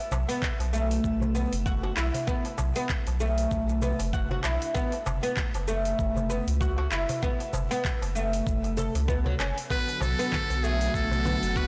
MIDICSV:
0, 0, Header, 1, 8, 480
1, 0, Start_track
1, 0, Key_signature, 2, "minor"
1, 0, Tempo, 618557
1, 1768, Time_signature, 4, 2, 24, 8
1, 9056, End_track
2, 0, Start_track
2, 0, Title_t, "Synth texture"
2, 0, Program_c, 0, 99
2, 7525, Note_on_c, 0, 78, 81
2, 9056, Note_off_c, 0, 78, 0
2, 9056, End_track
3, 0, Start_track
3, 0, Title_t, "Muted trumpet"
3, 0, Program_c, 1, 59
3, 7532, Note_on_c, 1, 71, 107
3, 7773, Note_on_c, 1, 69, 106
3, 7785, Note_off_c, 1, 71, 0
3, 8254, Note_on_c, 1, 68, 87
3, 8266, Note_off_c, 1, 69, 0
3, 8494, Note_on_c, 1, 69, 99
3, 8506, Note_off_c, 1, 68, 0
3, 8978, Note_on_c, 1, 71, 89
3, 8989, Note_off_c, 1, 69, 0
3, 9056, Note_off_c, 1, 71, 0
3, 9056, End_track
4, 0, Start_track
4, 0, Title_t, "Oud"
4, 0, Program_c, 2, 24
4, 222, Note_on_c, 2, 59, 87
4, 322, Note_off_c, 2, 59, 0
4, 567, Note_on_c, 2, 57, 71
4, 1037, Note_off_c, 2, 57, 0
4, 1046, Note_on_c, 2, 59, 66
4, 1176, Note_off_c, 2, 59, 0
4, 1286, Note_on_c, 2, 66, 84
4, 1414, Note_off_c, 2, 66, 0
4, 1424, Note_on_c, 2, 66, 65
4, 1483, Note_off_c, 2, 66, 0
4, 1527, Note_on_c, 2, 64, 68
4, 1757, Note_off_c, 2, 64, 0
4, 1764, Note_on_c, 2, 59, 93
4, 1895, Note_off_c, 2, 59, 0
4, 2141, Note_on_c, 2, 59, 91
4, 2241, Note_off_c, 2, 59, 0
4, 2486, Note_on_c, 2, 57, 68
4, 2956, Note_off_c, 2, 57, 0
4, 2965, Note_on_c, 2, 59, 69
4, 3095, Note_off_c, 2, 59, 0
4, 3207, Note_on_c, 2, 66, 81
4, 3336, Note_off_c, 2, 66, 0
4, 3344, Note_on_c, 2, 66, 64
4, 3403, Note_off_c, 2, 66, 0
4, 3446, Note_on_c, 2, 64, 74
4, 3677, Note_off_c, 2, 64, 0
4, 3682, Note_on_c, 2, 59, 100
4, 3814, Note_off_c, 2, 59, 0
4, 4058, Note_on_c, 2, 59, 91
4, 4160, Note_off_c, 2, 59, 0
4, 4406, Note_on_c, 2, 57, 74
4, 4876, Note_off_c, 2, 57, 0
4, 4886, Note_on_c, 2, 59, 72
4, 5016, Note_off_c, 2, 59, 0
4, 5126, Note_on_c, 2, 66, 76
4, 5250, Note_off_c, 2, 66, 0
4, 5260, Note_on_c, 2, 66, 64
4, 5321, Note_off_c, 2, 66, 0
4, 5367, Note_on_c, 2, 64, 71
4, 5597, Note_off_c, 2, 64, 0
4, 5607, Note_on_c, 2, 59, 95
4, 5736, Note_off_c, 2, 59, 0
4, 5982, Note_on_c, 2, 59, 96
4, 6082, Note_off_c, 2, 59, 0
4, 6327, Note_on_c, 2, 57, 67
4, 6797, Note_off_c, 2, 57, 0
4, 6808, Note_on_c, 2, 69, 66
4, 6930, Note_off_c, 2, 69, 0
4, 7047, Note_on_c, 2, 59, 84
4, 7170, Note_off_c, 2, 59, 0
4, 7185, Note_on_c, 2, 54, 67
4, 7244, Note_off_c, 2, 54, 0
4, 7290, Note_on_c, 2, 61, 69
4, 7418, Note_off_c, 2, 61, 0
4, 7532, Note_on_c, 2, 59, 93
4, 7659, Note_off_c, 2, 59, 0
4, 7908, Note_on_c, 2, 59, 90
4, 8005, Note_off_c, 2, 59, 0
4, 8254, Note_on_c, 2, 57, 72
4, 8720, Note_off_c, 2, 57, 0
4, 8731, Note_on_c, 2, 59, 64
4, 8858, Note_off_c, 2, 59, 0
4, 8972, Note_on_c, 2, 66, 81
4, 9056, Note_off_c, 2, 66, 0
4, 9056, End_track
5, 0, Start_track
5, 0, Title_t, "Analog synth pad"
5, 0, Program_c, 3, 89
5, 7525, Note_on_c, 3, 50, 80
5, 7525, Note_on_c, 3, 54, 77
5, 7526, Note_on_c, 3, 59, 73
5, 7527, Note_on_c, 3, 66, 89
5, 9056, Note_off_c, 3, 50, 0
5, 9056, Note_off_c, 3, 54, 0
5, 9056, Note_off_c, 3, 59, 0
5, 9056, Note_off_c, 3, 66, 0
5, 9056, End_track
6, 0, Start_track
6, 0, Title_t, "Sub bass"
6, 0, Program_c, 4, 38
6, 90, Note_on_c, 4, 35, 88
6, 191, Note_off_c, 4, 35, 0
6, 463, Note_on_c, 4, 35, 76
6, 766, Note_off_c, 4, 35, 0
6, 807, Note_on_c, 4, 35, 88
6, 1129, Note_off_c, 4, 35, 0
6, 1184, Note_on_c, 4, 30, 92
6, 1487, Note_off_c, 4, 30, 0
6, 1530, Note_on_c, 4, 35, 99
6, 1631, Note_off_c, 4, 35, 0
6, 2006, Note_on_c, 4, 35, 89
6, 2109, Note_off_c, 4, 35, 0
6, 2384, Note_on_c, 4, 35, 79
6, 2687, Note_off_c, 4, 35, 0
6, 2726, Note_on_c, 4, 35, 85
6, 3049, Note_off_c, 4, 35, 0
6, 3104, Note_on_c, 4, 30, 96
6, 3407, Note_off_c, 4, 30, 0
6, 3449, Note_on_c, 4, 35, 96
6, 3550, Note_off_c, 4, 35, 0
6, 3930, Note_on_c, 4, 30, 101
6, 4031, Note_off_c, 4, 30, 0
6, 4301, Note_on_c, 4, 30, 75
6, 4605, Note_off_c, 4, 30, 0
6, 4647, Note_on_c, 4, 30, 83
6, 4970, Note_off_c, 4, 30, 0
6, 5023, Note_on_c, 4, 37, 99
6, 5326, Note_off_c, 4, 37, 0
6, 5366, Note_on_c, 4, 30, 96
6, 5469, Note_off_c, 4, 30, 0
6, 5849, Note_on_c, 4, 30, 91
6, 5950, Note_off_c, 4, 30, 0
6, 6222, Note_on_c, 4, 30, 75
6, 6526, Note_off_c, 4, 30, 0
6, 6570, Note_on_c, 4, 30, 80
6, 6891, Note_off_c, 4, 30, 0
6, 6944, Note_on_c, 4, 37, 99
6, 7247, Note_off_c, 4, 37, 0
6, 7290, Note_on_c, 4, 30, 101
6, 7391, Note_off_c, 4, 30, 0
6, 7768, Note_on_c, 4, 35, 91
6, 7870, Note_off_c, 4, 35, 0
6, 8147, Note_on_c, 4, 35, 77
6, 8448, Note_off_c, 4, 35, 0
6, 8491, Note_on_c, 4, 35, 83
6, 8811, Note_off_c, 4, 35, 0
6, 8865, Note_on_c, 4, 30, 93
6, 9056, Note_off_c, 4, 30, 0
6, 9056, End_track
7, 0, Start_track
7, 0, Title_t, "Darbuka"
7, 92, Note_on_c, 9, 64, 90
7, 93, Note_on_c, 9, 63, 84
7, 169, Note_off_c, 9, 64, 0
7, 171, Note_off_c, 9, 63, 0
7, 464, Note_on_c, 9, 63, 39
7, 468, Note_on_c, 9, 62, 57
7, 541, Note_off_c, 9, 63, 0
7, 546, Note_off_c, 9, 62, 0
7, 944, Note_on_c, 9, 64, 86
7, 1022, Note_off_c, 9, 64, 0
7, 1050, Note_on_c, 9, 63, 35
7, 1127, Note_off_c, 9, 63, 0
7, 1423, Note_on_c, 9, 63, 53
7, 1501, Note_off_c, 9, 63, 0
7, 1664, Note_on_c, 9, 64, 76
7, 1742, Note_off_c, 9, 64, 0
7, 1902, Note_on_c, 9, 62, 51
7, 1980, Note_off_c, 9, 62, 0
7, 2001, Note_on_c, 9, 63, 71
7, 2006, Note_on_c, 9, 64, 86
7, 2079, Note_off_c, 9, 63, 0
7, 2083, Note_off_c, 9, 64, 0
7, 2386, Note_on_c, 9, 62, 64
7, 2463, Note_off_c, 9, 62, 0
7, 2865, Note_on_c, 9, 62, 35
7, 2868, Note_on_c, 9, 63, 34
7, 2942, Note_off_c, 9, 62, 0
7, 2946, Note_off_c, 9, 63, 0
7, 2964, Note_on_c, 9, 64, 78
7, 3042, Note_off_c, 9, 64, 0
7, 3097, Note_on_c, 9, 62, 55
7, 3175, Note_off_c, 9, 62, 0
7, 3342, Note_on_c, 9, 64, 77
7, 3420, Note_off_c, 9, 64, 0
7, 3441, Note_on_c, 9, 63, 72
7, 3518, Note_off_c, 9, 63, 0
7, 3825, Note_on_c, 9, 62, 45
7, 3903, Note_off_c, 9, 62, 0
7, 3928, Note_on_c, 9, 63, 76
7, 3928, Note_on_c, 9, 64, 90
7, 4006, Note_off_c, 9, 63, 0
7, 4006, Note_off_c, 9, 64, 0
7, 4305, Note_on_c, 9, 63, 36
7, 4307, Note_on_c, 9, 62, 69
7, 4382, Note_off_c, 9, 63, 0
7, 4385, Note_off_c, 9, 62, 0
7, 4785, Note_on_c, 9, 64, 79
7, 4863, Note_off_c, 9, 64, 0
7, 4883, Note_on_c, 9, 63, 38
7, 4961, Note_off_c, 9, 63, 0
7, 5263, Note_on_c, 9, 63, 51
7, 5341, Note_off_c, 9, 63, 0
7, 5506, Note_on_c, 9, 64, 80
7, 5583, Note_off_c, 9, 64, 0
7, 5741, Note_on_c, 9, 62, 38
7, 5819, Note_off_c, 9, 62, 0
7, 5845, Note_on_c, 9, 64, 83
7, 5849, Note_on_c, 9, 63, 67
7, 5923, Note_off_c, 9, 64, 0
7, 5926, Note_off_c, 9, 63, 0
7, 6225, Note_on_c, 9, 62, 65
7, 6302, Note_off_c, 9, 62, 0
7, 6703, Note_on_c, 9, 63, 32
7, 6708, Note_on_c, 9, 62, 31
7, 6780, Note_off_c, 9, 63, 0
7, 6785, Note_off_c, 9, 62, 0
7, 6813, Note_on_c, 9, 64, 84
7, 6891, Note_off_c, 9, 64, 0
7, 6946, Note_on_c, 9, 62, 63
7, 7023, Note_off_c, 9, 62, 0
7, 7183, Note_on_c, 9, 64, 76
7, 7261, Note_off_c, 9, 64, 0
7, 7291, Note_on_c, 9, 63, 60
7, 7369, Note_off_c, 9, 63, 0
7, 7664, Note_on_c, 9, 62, 42
7, 7741, Note_off_c, 9, 62, 0
7, 7765, Note_on_c, 9, 63, 66
7, 7772, Note_on_c, 9, 64, 89
7, 7842, Note_off_c, 9, 63, 0
7, 7849, Note_off_c, 9, 64, 0
7, 8145, Note_on_c, 9, 62, 53
7, 8148, Note_on_c, 9, 63, 33
7, 8222, Note_off_c, 9, 62, 0
7, 8225, Note_off_c, 9, 63, 0
7, 8624, Note_on_c, 9, 64, 77
7, 8702, Note_off_c, 9, 64, 0
7, 8733, Note_on_c, 9, 63, 31
7, 8810, Note_off_c, 9, 63, 0
7, 9056, End_track
8, 0, Start_track
8, 0, Title_t, "Drums"
8, 93, Note_on_c, 9, 82, 68
8, 171, Note_off_c, 9, 82, 0
8, 229, Note_on_c, 9, 46, 55
8, 231, Note_on_c, 9, 82, 31
8, 307, Note_off_c, 9, 46, 0
8, 309, Note_off_c, 9, 82, 0
8, 328, Note_on_c, 9, 36, 97
8, 333, Note_on_c, 9, 39, 76
8, 335, Note_on_c, 9, 82, 39
8, 406, Note_off_c, 9, 36, 0
8, 410, Note_off_c, 9, 39, 0
8, 413, Note_off_c, 9, 82, 0
8, 468, Note_on_c, 9, 46, 49
8, 470, Note_on_c, 9, 82, 33
8, 545, Note_off_c, 9, 46, 0
8, 547, Note_off_c, 9, 82, 0
8, 573, Note_on_c, 9, 82, 73
8, 651, Note_off_c, 9, 82, 0
8, 706, Note_on_c, 9, 46, 60
8, 709, Note_on_c, 9, 82, 34
8, 784, Note_off_c, 9, 46, 0
8, 786, Note_off_c, 9, 82, 0
8, 808, Note_on_c, 9, 36, 95
8, 812, Note_on_c, 9, 82, 43
8, 886, Note_off_c, 9, 36, 0
8, 890, Note_off_c, 9, 82, 0
8, 948, Note_on_c, 9, 82, 29
8, 1025, Note_off_c, 9, 82, 0
8, 1051, Note_on_c, 9, 82, 73
8, 1128, Note_off_c, 9, 82, 0
8, 1184, Note_on_c, 9, 46, 57
8, 1187, Note_on_c, 9, 82, 34
8, 1262, Note_off_c, 9, 46, 0
8, 1264, Note_off_c, 9, 82, 0
8, 1287, Note_on_c, 9, 36, 102
8, 1291, Note_on_c, 9, 82, 43
8, 1365, Note_off_c, 9, 36, 0
8, 1368, Note_off_c, 9, 82, 0
8, 1528, Note_on_c, 9, 39, 77
8, 1530, Note_on_c, 9, 82, 78
8, 1605, Note_off_c, 9, 39, 0
8, 1607, Note_off_c, 9, 82, 0
8, 1664, Note_on_c, 9, 46, 52
8, 1667, Note_on_c, 9, 82, 32
8, 1742, Note_off_c, 9, 46, 0
8, 1744, Note_off_c, 9, 82, 0
8, 1767, Note_on_c, 9, 36, 98
8, 1768, Note_on_c, 9, 82, 45
8, 1844, Note_off_c, 9, 36, 0
8, 1846, Note_off_c, 9, 82, 0
8, 1900, Note_on_c, 9, 46, 42
8, 1978, Note_off_c, 9, 46, 0
8, 2005, Note_on_c, 9, 82, 74
8, 2082, Note_off_c, 9, 82, 0
8, 2140, Note_on_c, 9, 46, 55
8, 2142, Note_on_c, 9, 82, 33
8, 2217, Note_off_c, 9, 46, 0
8, 2220, Note_off_c, 9, 82, 0
8, 2244, Note_on_c, 9, 39, 72
8, 2247, Note_on_c, 9, 36, 102
8, 2247, Note_on_c, 9, 82, 40
8, 2322, Note_off_c, 9, 39, 0
8, 2324, Note_off_c, 9, 82, 0
8, 2325, Note_off_c, 9, 36, 0
8, 2380, Note_on_c, 9, 46, 44
8, 2382, Note_on_c, 9, 82, 33
8, 2458, Note_off_c, 9, 46, 0
8, 2460, Note_off_c, 9, 82, 0
8, 2487, Note_on_c, 9, 82, 73
8, 2564, Note_off_c, 9, 82, 0
8, 2622, Note_on_c, 9, 46, 55
8, 2624, Note_on_c, 9, 82, 34
8, 2699, Note_off_c, 9, 46, 0
8, 2702, Note_off_c, 9, 82, 0
8, 2726, Note_on_c, 9, 36, 92
8, 2727, Note_on_c, 9, 82, 44
8, 2804, Note_off_c, 9, 36, 0
8, 2805, Note_off_c, 9, 82, 0
8, 2863, Note_on_c, 9, 82, 29
8, 2941, Note_off_c, 9, 82, 0
8, 2966, Note_on_c, 9, 82, 74
8, 3043, Note_off_c, 9, 82, 0
8, 3101, Note_on_c, 9, 46, 53
8, 3104, Note_on_c, 9, 82, 34
8, 3179, Note_off_c, 9, 46, 0
8, 3181, Note_off_c, 9, 82, 0
8, 3207, Note_on_c, 9, 36, 107
8, 3208, Note_on_c, 9, 82, 44
8, 3284, Note_off_c, 9, 36, 0
8, 3285, Note_off_c, 9, 82, 0
8, 3445, Note_on_c, 9, 39, 81
8, 3447, Note_on_c, 9, 82, 78
8, 3523, Note_off_c, 9, 39, 0
8, 3525, Note_off_c, 9, 82, 0
8, 3584, Note_on_c, 9, 46, 54
8, 3586, Note_on_c, 9, 82, 32
8, 3662, Note_off_c, 9, 46, 0
8, 3664, Note_off_c, 9, 82, 0
8, 3687, Note_on_c, 9, 36, 99
8, 3689, Note_on_c, 9, 82, 45
8, 3765, Note_off_c, 9, 36, 0
8, 3767, Note_off_c, 9, 82, 0
8, 3820, Note_on_c, 9, 46, 40
8, 3897, Note_off_c, 9, 46, 0
8, 3929, Note_on_c, 9, 82, 74
8, 4007, Note_off_c, 9, 82, 0
8, 4061, Note_on_c, 9, 46, 54
8, 4063, Note_on_c, 9, 82, 35
8, 4139, Note_off_c, 9, 46, 0
8, 4141, Note_off_c, 9, 82, 0
8, 4165, Note_on_c, 9, 39, 74
8, 4167, Note_on_c, 9, 36, 101
8, 4167, Note_on_c, 9, 82, 42
8, 4242, Note_off_c, 9, 39, 0
8, 4245, Note_off_c, 9, 36, 0
8, 4245, Note_off_c, 9, 82, 0
8, 4302, Note_on_c, 9, 46, 43
8, 4304, Note_on_c, 9, 82, 33
8, 4379, Note_off_c, 9, 46, 0
8, 4382, Note_off_c, 9, 82, 0
8, 4406, Note_on_c, 9, 82, 79
8, 4484, Note_off_c, 9, 82, 0
8, 4542, Note_on_c, 9, 46, 52
8, 4544, Note_on_c, 9, 82, 33
8, 4619, Note_off_c, 9, 46, 0
8, 4622, Note_off_c, 9, 82, 0
8, 4647, Note_on_c, 9, 36, 105
8, 4649, Note_on_c, 9, 82, 46
8, 4725, Note_off_c, 9, 36, 0
8, 4727, Note_off_c, 9, 82, 0
8, 4787, Note_on_c, 9, 82, 31
8, 4864, Note_off_c, 9, 82, 0
8, 4891, Note_on_c, 9, 82, 80
8, 4969, Note_off_c, 9, 82, 0
8, 5026, Note_on_c, 9, 46, 54
8, 5029, Note_on_c, 9, 82, 35
8, 5104, Note_off_c, 9, 46, 0
8, 5106, Note_off_c, 9, 82, 0
8, 5128, Note_on_c, 9, 36, 105
8, 5132, Note_on_c, 9, 82, 48
8, 5205, Note_off_c, 9, 36, 0
8, 5209, Note_off_c, 9, 82, 0
8, 5368, Note_on_c, 9, 39, 74
8, 5370, Note_on_c, 9, 82, 79
8, 5445, Note_off_c, 9, 39, 0
8, 5447, Note_off_c, 9, 82, 0
8, 5503, Note_on_c, 9, 46, 55
8, 5505, Note_on_c, 9, 82, 33
8, 5580, Note_off_c, 9, 46, 0
8, 5583, Note_off_c, 9, 82, 0
8, 5608, Note_on_c, 9, 36, 108
8, 5610, Note_on_c, 9, 82, 42
8, 5686, Note_off_c, 9, 36, 0
8, 5688, Note_off_c, 9, 82, 0
8, 5744, Note_on_c, 9, 46, 39
8, 5822, Note_off_c, 9, 46, 0
8, 5849, Note_on_c, 9, 82, 75
8, 5926, Note_off_c, 9, 82, 0
8, 5985, Note_on_c, 9, 46, 51
8, 5988, Note_on_c, 9, 82, 34
8, 6063, Note_off_c, 9, 46, 0
8, 6065, Note_off_c, 9, 82, 0
8, 6089, Note_on_c, 9, 36, 100
8, 6090, Note_on_c, 9, 39, 70
8, 6093, Note_on_c, 9, 82, 44
8, 6167, Note_off_c, 9, 36, 0
8, 6168, Note_off_c, 9, 39, 0
8, 6170, Note_off_c, 9, 82, 0
8, 6228, Note_on_c, 9, 46, 42
8, 6230, Note_on_c, 9, 82, 32
8, 6305, Note_off_c, 9, 46, 0
8, 6308, Note_off_c, 9, 82, 0
8, 6332, Note_on_c, 9, 82, 77
8, 6409, Note_off_c, 9, 82, 0
8, 6467, Note_on_c, 9, 46, 52
8, 6469, Note_on_c, 9, 82, 34
8, 6544, Note_off_c, 9, 46, 0
8, 6547, Note_off_c, 9, 82, 0
8, 6570, Note_on_c, 9, 36, 102
8, 6573, Note_on_c, 9, 82, 43
8, 6648, Note_off_c, 9, 36, 0
8, 6651, Note_off_c, 9, 82, 0
8, 6706, Note_on_c, 9, 46, 28
8, 6708, Note_on_c, 9, 82, 31
8, 6784, Note_off_c, 9, 46, 0
8, 6786, Note_off_c, 9, 82, 0
8, 6810, Note_on_c, 9, 82, 82
8, 6888, Note_off_c, 9, 82, 0
8, 6947, Note_on_c, 9, 46, 54
8, 6949, Note_on_c, 9, 82, 32
8, 7025, Note_off_c, 9, 46, 0
8, 7027, Note_off_c, 9, 82, 0
8, 7050, Note_on_c, 9, 36, 103
8, 7055, Note_on_c, 9, 82, 44
8, 7128, Note_off_c, 9, 36, 0
8, 7133, Note_off_c, 9, 82, 0
8, 7294, Note_on_c, 9, 39, 74
8, 7296, Note_on_c, 9, 82, 78
8, 7372, Note_off_c, 9, 39, 0
8, 7374, Note_off_c, 9, 82, 0
8, 7431, Note_on_c, 9, 46, 51
8, 7434, Note_on_c, 9, 82, 32
8, 7509, Note_off_c, 9, 46, 0
8, 7511, Note_off_c, 9, 82, 0
8, 7530, Note_on_c, 9, 36, 99
8, 7539, Note_on_c, 9, 82, 45
8, 7608, Note_off_c, 9, 36, 0
8, 7616, Note_off_c, 9, 82, 0
8, 7672, Note_on_c, 9, 46, 41
8, 7750, Note_off_c, 9, 46, 0
8, 7778, Note_on_c, 9, 82, 74
8, 7855, Note_off_c, 9, 82, 0
8, 7911, Note_on_c, 9, 46, 53
8, 7913, Note_on_c, 9, 82, 35
8, 7989, Note_off_c, 9, 46, 0
8, 7991, Note_off_c, 9, 82, 0
8, 8011, Note_on_c, 9, 36, 106
8, 8015, Note_on_c, 9, 39, 68
8, 8015, Note_on_c, 9, 64, 69
8, 8018, Note_on_c, 9, 82, 40
8, 8088, Note_off_c, 9, 36, 0
8, 8093, Note_off_c, 9, 39, 0
8, 8093, Note_off_c, 9, 64, 0
8, 8095, Note_off_c, 9, 82, 0
8, 8150, Note_on_c, 9, 46, 45
8, 8152, Note_on_c, 9, 82, 33
8, 8228, Note_off_c, 9, 46, 0
8, 8230, Note_off_c, 9, 82, 0
8, 8256, Note_on_c, 9, 82, 72
8, 8334, Note_off_c, 9, 82, 0
8, 8389, Note_on_c, 9, 46, 53
8, 8391, Note_on_c, 9, 82, 33
8, 8466, Note_off_c, 9, 46, 0
8, 8469, Note_off_c, 9, 82, 0
8, 8491, Note_on_c, 9, 36, 99
8, 8496, Note_on_c, 9, 82, 44
8, 8568, Note_off_c, 9, 36, 0
8, 8573, Note_off_c, 9, 82, 0
8, 8631, Note_on_c, 9, 82, 29
8, 8709, Note_off_c, 9, 82, 0
8, 8735, Note_on_c, 9, 64, 81
8, 8737, Note_on_c, 9, 82, 77
8, 8812, Note_off_c, 9, 64, 0
8, 8815, Note_off_c, 9, 82, 0
8, 8869, Note_on_c, 9, 46, 52
8, 8871, Note_on_c, 9, 82, 34
8, 8946, Note_off_c, 9, 46, 0
8, 8949, Note_off_c, 9, 82, 0
8, 8970, Note_on_c, 9, 36, 109
8, 8975, Note_on_c, 9, 82, 44
8, 9047, Note_off_c, 9, 36, 0
8, 9053, Note_off_c, 9, 82, 0
8, 9056, End_track
0, 0, End_of_file